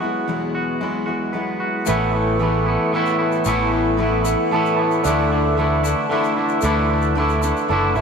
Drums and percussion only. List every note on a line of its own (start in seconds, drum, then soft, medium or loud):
1.86 shaker loud
3.06 shaker soft
3.32 shaker soft
3.45 shaker medium
4.25 shaker loud
4.66 shaker soft
4.91 shaker soft
5.05 shaker medium
5.85 shaker medium
6.24 shaker soft
6.49 shaker soft
6.61 shaker medium
7.02 shaker soft
7.29 shaker soft
7.42 shaker medium
7.56 shaker soft
7.95 shaker soft